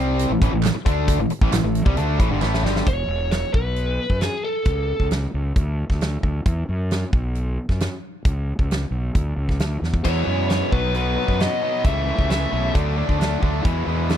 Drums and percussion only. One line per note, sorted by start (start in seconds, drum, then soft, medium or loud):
0.19 closed hi-hat medium
0.42 kick loud
0.42 closed hi-hat medium
0.63 snare loud
0.63 clap loud
0.63 closed hi-hat loud
0.86 kick loud
0.86 closed hi-hat medium
1.08 kick loud
1.08 closed hi-hat loud
1.30 closed hi-hat medium
1.41 kick loud
1.52 snare loud
1.52 clap loud
1.52 closed hi-hat loud
1.75 closed hi-hat medium
1.86 kick loud
1.97 closed hi-hat medium
2.20 kick loud
2.20 closed hi-hat medium
2.42 snare medium
2.42 clap medium
2.54 snare medium
2.66 snare medium
2.76 snare medium
2.86 kick loud
2.86 closed hi-hat medium
3.31 snare loud
3.31 closed hi-hat medium
3.54 kick medium
3.76 closed hi-hat medium
4.10 kick medium
4.21 snare loud
4.21 closed hi-hat medium
4.65 kick loud
4.65 closed hi-hat medium
5.00 kick medium
5.11 snare loud
5.11 closed hi-hat medium
5.56 kick loud
5.56 closed hi-hat medium
5.90 kick medium
5.90 snare soft
6.01 snare medium
6.01 closed hi-hat medium
6.23 kick medium
6.46 kick loud
6.46 closed hi-hat medium
6.91 snare medium
6.91 closed hi-hat medium
7.13 kick medium
7.35 closed hi-hat medium
7.69 kick medium
7.69 snare soft
7.80 snare medium
7.80 closed hi-hat medium
8.25 kick loud
8.25 closed hi-hat medium
8.59 kick medium
8.71 snare loud
8.71 closed hi-hat medium
9.15 kick medium
9.15 closed hi-hat medium
9.49 kick medium
9.49 snare soft
9.60 snare medium
9.60 closed hi-hat soft
9.84 snare medium
9.94 kick medium
10.04 kick medium
10.04 closed hi-hat medium
10.04 crash medium
10.50 snare loud
10.50 closed hi-hat medium
10.72 kick medium
10.94 closed hi-hat medium
11.28 kick medium
11.40 snare loud
11.40 closed hi-hat medium
11.85 kick loud
11.85 closed hi-hat medium
12.19 kick medium
12.30 snare loud
12.30 closed hi-hat medium
12.75 kick loud
12.75 closed hi-hat medium
13.09 kick medium
13.21 snare loud
13.21 closed hi-hat medium
13.43 kick medium
13.65 kick loud
13.65 closed hi-hat medium
14.10 snare loud
14.10 closed hi-hat medium